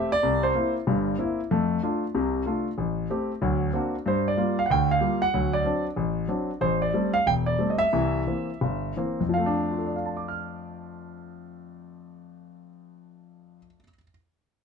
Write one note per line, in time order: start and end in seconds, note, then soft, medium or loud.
0.00 0.11 A3 soft
0.00 0.11 C4 soft
0.00 0.12 G4 medium
0.12 0.44 D5 loud
0.23 0.50 C2 medium
0.43 0.72 C5 medium
0.55 0.76 A#3 soft
0.55 0.76 C4 soft
0.55 0.76 E4 soft
0.87 1.14 G1 medium
0.87 1.14 G2 medium
1.19 1.39 A#3 soft
1.19 1.39 C4 soft
1.19 1.40 E4 medium
1.51 1.78 F2 medium
1.51 1.78 A3 medium
1.83 2.03 A3 soft
1.83 2.03 D4 medium
1.83 2.04 F4 medium
2.15 2.42 C2 medium
2.15 2.42 C3 medium
2.46 2.67 A3 medium
2.46 2.67 D4 soft
2.46 2.67 F4 medium
2.78 3.05 A1 medium
3.10 3.31 A3 soft
3.10 3.31 C4 soft
3.10 3.31 G4 medium
3.42 3.69 D2 medium
3.42 3.69 F#3 medium
3.74 3.95 A#3 soft
3.74 3.95 C4 soft
3.74 3.95 D4 soft
3.74 3.95 F#4 medium
4.06 4.33 G2 medium
4.06 4.27 C5 medium
4.28 4.56 D5 medium
4.37 4.58 G3 soft
4.37 4.58 A#3 soft
4.37 4.59 F4 soft
4.59 4.63 F5 medium
4.66 4.69 F#5 medium
4.70 4.97 D2 medium
4.70 4.98 D3 medium
4.70 4.89 G5 medium
4.91 5.20 F5 medium
5.01 5.22 G3 soft
5.01 5.22 A#3 soft
5.01 5.23 F4 medium
5.22 5.54 F#5 loud
5.34 5.61 D2 medium
5.34 5.61 F#3 medium
5.53 5.83 D5 medium
5.65 5.86 F#3 soft
5.65 5.86 C4 soft
5.65 5.86 D4 medium
5.96 6.24 A1 medium
6.28 6.50 F#3 soft
6.28 6.50 C4 soft
6.28 6.50 D4 soft
6.61 6.89 A1 medium
6.61 6.82 C5 medium
6.82 7.14 D5 medium
6.94 7.15 G3 medium
6.94 7.15 A3 soft
6.94 7.15 C4 soft
7.14 7.26 F5 medium
7.26 7.54 E1 medium
7.26 7.32 G5 loud
7.46 7.68 D5 medium
7.58 7.80 G3 soft
7.58 7.80 A3 soft
7.58 7.81 C4 soft
7.70 7.79 D#5 medium
7.78 8.92 E5 loud
7.93 8.21 C2 medium
7.93 8.21 E3 medium
8.27 8.49 E3 soft
8.27 8.49 A#3 soft
8.27 8.49 C4 soft
8.61 8.92 G1 medium
8.96 9.20 E3 soft
8.96 9.21 A#3 soft
8.96 9.21 C4 medium
9.20 13.58 F2 medium
9.29 13.66 F3 medium
9.34 13.75 A3 medium
9.34 9.94 F5 medium
9.46 13.84 D4 medium
9.71 13.80 F4 soft
9.78 13.83 A4 soft
9.87 13.88 D5 soft
9.96 13.92 F5 soft
10.06 13.97 A5 soft
10.17 14.03 D6 soft
10.28 14.08 F6 soft